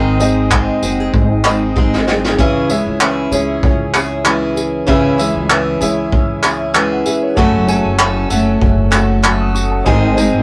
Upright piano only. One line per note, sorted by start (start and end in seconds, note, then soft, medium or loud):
0.00 0.15 C4 medium
0.00 0.16 G#4 medium
0.00 0.16 D#5 medium
0.19 1.28 C4 medium
0.19 1.29 G#4 medium
0.19 1.29 D#5 medium
1.44 2.26 C4 medium
1.44 2.27 G#4 medium
1.44 2.27 D#5 medium
2.38 2.65 C#4 medium
2.38 2.66 G#4 medium
2.38 2.66 E5 medium
2.69 3.24 C#4 medium
2.69 3.24 G#4 medium
2.69 3.25 E5 medium
3.31 4.40 C#4 medium
3.31 4.40 G#4 medium
3.31 4.41 C#5 medium
4.86 5.14 C#4 medium
4.86 5.15 G#4 medium
4.86 5.15 E5 loud
5.17 5.72 C#4 medium
5.17 5.73 G#4 medium
5.17 5.73 E5 medium
5.80 6.89 C#4 medium
5.80 6.90 G#4 medium
5.80 6.75 E5 medium
6.75 6.91 G#5 medium
6.92 7.05 F#5 medium
7.06 7.22 E5 medium
7.22 7.52 C#5 medium
7.35 7.63 C#4 medium
7.35 7.64 A4 medium
7.35 7.64 F#5 medium
7.67 8.22 C#4 medium
7.67 7.75 G#4 medium
7.67 8.23 G#5 loud
7.75 8.26 A4 medium
8.29 9.38 C#4 medium
8.29 9.38 A4 medium
8.29 9.39 F#5 medium
9.24 9.40 F#6 medium
9.41 9.54 D#6 medium
9.54 9.71 C#6 medium
9.71 10.01 A5 medium
9.84 10.12 D#4 medium
9.84 10.13 C5 medium
9.84 10.13 G#5 loud
10.15 10.43 D#4 medium
10.15 10.43 C5 medium
10.15 10.43 G#5 loud